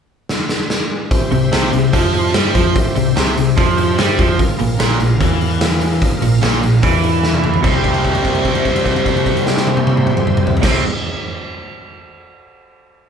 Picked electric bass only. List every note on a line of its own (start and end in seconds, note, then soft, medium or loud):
1.32 1.51 C2 medium
1.53 1.72 C2 medium
1.73 1.92 C2 medium
1.93 2.32 F2 medium
2.34 2.54 G2 medium
2.55 2.74 F2 medium
2.96 3.15 C2 medium
3.17 3.36 C2 loud
3.38 3.57 C2 medium
3.58 3.96 F2 medium
3.99 4.18 G2 medium
4.19 4.38 F2 medium
4.60 4.79 A#1 medium
4.81 4.99 A#1 loud
5.01 5.20 A#1 medium
5.21 5.98 E2 medium
6.22 6.41 A#1 medium
6.43 6.62 A#1 loud
6.63 6.82 A#1 medium
6.83 7.60 E2 loud
7.64 10.55 C2 loud
10.63 10.80 C2 medium